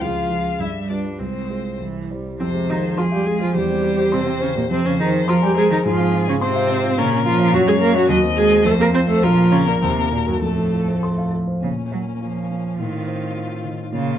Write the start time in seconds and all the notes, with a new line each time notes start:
0.01 C#2 F3 F4 F5
0.30 F3 F4 G#4
0.59 G2 G3 E4 E5
0.89 G3 D4 F4 B4 D5
1.19 C2 G#3 C4 C5
1.50 G#3 F4 C5
1.80 C2 E3
2.11 G3 E4 C5
2.40 F2 C3 C4 C5
2.54 G#3
2.69 D#3 D#4 F4
2.83 G#4
2.97 F3 F4 G#4 C6
3.11 G3 G4 F5
3.26 G#3 G#4
3.41 F3 F4 C5
3.55 E2 G3 G4 C5
3.69 C4
3.84 G4
3.98 C5
4.12 C3 C4 C6
4.27 G5
4.40 C#3 C#4 C5
4.55 A#2 A#3 G4
4.71 F2 C3 C4 C5
4.85 C#3 C4 C#4
4.99 D#3 D#4 G#4
5.13 C5
5.28 F3 F4 A#4 C6
5.42 G3 G4 G#5
5.56 G#3 G#4 C5
5.70 D#3 D#4 G#4
5.85 G#2 F3 F4 G#4
6.00 C4
6.14 F4
6.28 C#3 C#4 C5
6.41 C3 C4 C5 C6
6.55 F5
6.70 C5
6.84 F4
6.98 A#2 C#3 C#4 A#4
7.13 C#4
7.26 F3 F4
7.40 C#5
7.53 F#2 F#3 F#4 C#5
7.67 G#3 C#4 G#4
7.81 A#3 F#4 A#4
7.95 F#3 F#4 C#5
8.08 D#2 F#3 F#4 D#5
8.23 C4
8.36 G#3 F#4 G#4
8.51 C5
8.64 F2 A3 A4 C5
8.79 A#3 C4 A#4
8.93 C4 F4 C5
9.08 A3 A4 C5
9.22 A#1 F3 F4 A#4
9.38 A#3
9.52 C#3 C#4 F4
9.67 A#2 A#3 A#4
9.81 D#2 C3 C4
9.97 A#3
10.12 A#2 A#3 F#4
10.27 F#2 F#3 A#4
10.42 F2 A2 A3 A4
10.58 F3
10.72 F4
10.88 C5
11.03 C6
11.18 F5
11.33 F4
11.47 C5
11.62 A#2 C#3 A#3 C#4
11.91 F#3 C#5
12.21 F3 F4
12.51 A#3
12.79 A2 D#3 C4 F4
13.07 C5
13.35 F4
13.64 D#3
13.92 A#2 C#3 A#3 F4